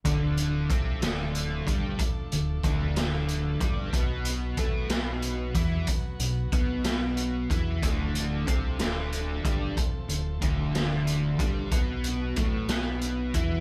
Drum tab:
HH |xxxxxx|xxxxxx|xxxxxx|xxxxxx|
SD |---o--|---o--|---o--|---o--|
BD |o-o--o|o-o--o|o-o--o|o-o--o|

HH |xxxxxx|xxxxxx|xxxxxx|
SD |---o--|---o--|---o--|
BD |o-o--o|o-o--o|o-o--o|